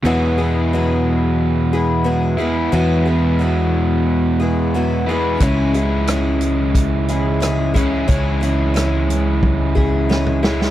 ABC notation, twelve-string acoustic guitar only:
X:1
M:4/4
L:1/8
Q:1/4=90
K:E
V:1 name="Twelve-string acoustic guitar"
[E,F,B,EG] [B,EG] [F,B,EG]3 [B,EG] [F,B,EG] [B,EG] | [E,F,B,EG] [B,EG] [F,B,EG]3 [B,EG] [F,B,EG] [B,EG] | [C,G,CEG] [CEG] [G,CEG]3 [CEG] [G,CEG] [CEG] | [C,G,CEG] [CEG] [G,CEG]3 [CEG] [G,CEG] [CEG] |]